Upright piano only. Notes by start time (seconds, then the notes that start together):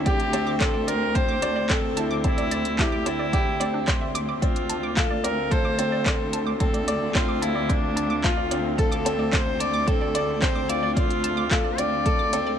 Already playing: C4 E4 D5
0.06 G4
0.33 C4
0.61 C5
1.15 C4
1.42 D5
1.70 C4
1.97 E4
2.24 C4
2.79 E4
3.06 C4
3.33 G4
3.60 C4
3.88 C5
4.42 C4
4.97 F4
5.24 C4
5.51 A4
5.79 C4
6.06 C5
6.61 C4
6.88 D5
7.15 C4
7.42 F4
7.69 C4
8.24 F4
8.51 C4
8.79 A4
9.06 C4
9.33 C5
9.88 C4
10.15 D5
10.42 C4
10.69 F4
10.97 C4
11.52 F4
11.78 C4
12.06 A4
12.33 C4